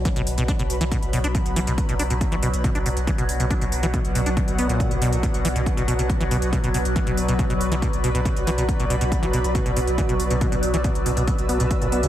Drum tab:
HH |xxoxxxoxxxoxxxox|xxoxxxoxxxoxxxox|xxoxxxoxxxoxxxox|xxoxxxoxxxoxxxox|
BD |o---o---o---o---|o---o---o---o---|o---o---o---o---|o---o---o---o---|

HH |xxoxxxoxxxoxxxox|xxoxxxoxxxoxxxox|xxoxxxoxxxoxxxox|
BD |o---o---o---o---|o---o---o---o---|o---o---o---o---|